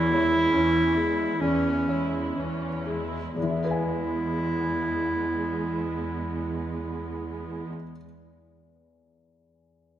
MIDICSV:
0, 0, Header, 1, 5, 480
1, 0, Start_track
1, 0, Key_signature, 4, "major"
1, 0, Tempo, 860832
1, 781, Tempo, 950872
1, 1261, Tempo, 1006711
1, 1741, Tempo, 970874
1, 1742, Time_signature, 4, 2, 24, 8
1, 5022, End_track
2, 0, Start_track
2, 0, Title_t, "Felt piano"
2, 0, Program_c, 0, 0
2, 0, Control_c, 0, 64, 127
2, 0, Note_on_c, 0, 40, 47
2, 70, Note_on_c, 0, 73, 36
2, 299, Note_on_c, 0, 61, 39
2, 441, Note_off_c, 0, 73, 0
2, 534, Note_on_c, 0, 68, 35
2, 683, Note_off_c, 0, 61, 0
2, 763, Note_off_c, 0, 40, 0
2, 786, Note_on_c, 0, 40, 35
2, 922, Note_off_c, 0, 68, 0
2, 1023, Note_on_c, 0, 73, 36
2, 1261, Note_on_c, 0, 61, 32
2, 1408, Note_off_c, 0, 73, 0
2, 1500, Note_on_c, 0, 68, 31
2, 1648, Note_off_c, 0, 61, 0
2, 1725, Note_off_c, 0, 40, 0
2, 1740, Note_off_c, 0, 68, 0
2, 1741, Note_on_c, 0, 40, 30
2, 1753, Control_c, 0, 64, 0
2, 1776, Note_on_c, 0, 52, 30
2, 1809, Note_on_c, 0, 64, 29
2, 1844, Note_on_c, 0, 68, 30
2, 1864, Control_c, 0, 64, 127
2, 1882, Note_on_c, 0, 71, 30
2, 1914, Note_on_c, 0, 80, 30
2, 3880, Note_off_c, 0, 40, 0
2, 3915, Note_off_c, 0, 52, 0
2, 3948, Note_off_c, 0, 64, 0
2, 3983, Note_off_c, 0, 68, 0
2, 4021, Note_off_c, 0, 71, 0
2, 4054, Note_off_c, 0, 80, 0
2, 5022, End_track
3, 0, Start_track
3, 0, Title_t, "Clarinet"
3, 0, Program_c, 1, 71
3, 0, Note_on_c, 1, 64, 82
3, 785, Note_on_c, 1, 61, 56
3, 792, Note_off_c, 1, 64, 0
3, 1263, Note_off_c, 1, 61, 0
3, 1737, Note_on_c, 1, 64, 52
3, 3876, Note_off_c, 1, 64, 0
3, 5022, End_track
4, 0, Start_track
4, 0, Title_t, "Viola section"
4, 0, Program_c, 2, 48
4, 66, Note_on_c, 2, 56, 41
4, 68, Note_on_c, 2, 64, 42
4, 297, Note_off_c, 2, 56, 0
4, 297, Note_off_c, 2, 64, 0
4, 301, Note_on_c, 2, 52, 41
4, 301, Note_on_c, 2, 61, 41
4, 537, Note_off_c, 2, 52, 0
4, 537, Note_off_c, 2, 61, 0
4, 541, Note_on_c, 2, 64, 42
4, 542, Note_on_c, 2, 56, 42
4, 784, Note_on_c, 2, 61, 39
4, 785, Note_off_c, 2, 64, 0
4, 786, Note_off_c, 2, 56, 0
4, 786, Note_on_c, 2, 52, 43
4, 1002, Note_off_c, 2, 61, 0
4, 1003, Note_off_c, 2, 52, 0
4, 1024, Note_on_c, 2, 64, 35
4, 1028, Note_on_c, 2, 56, 36
4, 1265, Note_off_c, 2, 64, 0
4, 1267, Note_off_c, 2, 56, 0
4, 1268, Note_on_c, 2, 61, 35
4, 1271, Note_on_c, 2, 52, 35
4, 1506, Note_off_c, 2, 61, 0
4, 1508, Note_off_c, 2, 52, 0
4, 1511, Note_on_c, 2, 56, 35
4, 1511, Note_on_c, 2, 64, 34
4, 1745, Note_off_c, 2, 56, 0
4, 1746, Note_off_c, 2, 64, 0
4, 1750, Note_on_c, 2, 59, 38
4, 1751, Note_on_c, 2, 56, 37
4, 3889, Note_off_c, 2, 59, 0
4, 3890, Note_off_c, 2, 56, 0
4, 5022, End_track
5, 0, Start_track
5, 0, Title_t, "Cello section"
5, 0, Program_c, 3, 48
5, 0, Note_on_c, 3, 40, 58
5, 236, Note_off_c, 3, 40, 0
5, 296, Note_on_c, 3, 40, 50
5, 724, Note_off_c, 3, 40, 0
5, 784, Note_on_c, 3, 40, 50
5, 1205, Note_off_c, 3, 40, 0
5, 1265, Note_on_c, 3, 40, 46
5, 1689, Note_off_c, 3, 40, 0
5, 1746, Note_on_c, 3, 40, 41
5, 3885, Note_off_c, 3, 40, 0
5, 5022, End_track
0, 0, End_of_file